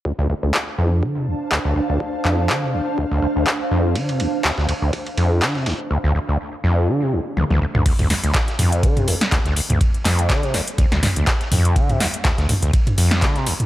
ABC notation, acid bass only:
X:1
M:4/4
L:1/16
Q:"Swing 16ths" 1/4=123
K:Dm
V:1 name="Acid bass" clef=bass
D,, D,, D,, D,, z2 F,,2 D, C, D,, z D,, D,, D,, D,, | z2 F,,2 D, C, D,, z D,, D,, D,, D,, z2 F,,2 | D, C, D,, z D,, D,, D,, D,, z2 F,,2 D, C, D,, z | D,, D,, D,, D,, z2 F,,2 D, C, D,, z D,, D,, D,, D,, |
z D,, D,, D,, z2 F,,2 D, C, D,, z D,, D,, D,, D,, | z2 F,,2 D, C, D,, z D,, D,, D,, D,, z2 F,,2 | D, C, D,, z D,, D,, D,, D,, z2 F,,2 D, C, D,, z |]